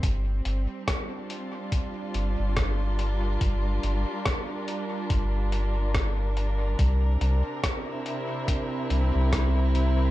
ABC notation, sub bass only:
X:1
M:4/4
L:1/16
Q:"Swing 16ths" 1/4=71
K:Gdor
V:1 name="Sub bass" clef=bass
G,,,2 G,,, z6 z G,,, G,,,4- G,,, | G,,,2 G,,, z4 z G,,,8 | C,,2 C,, z6 z C,, C,,4- C,, |]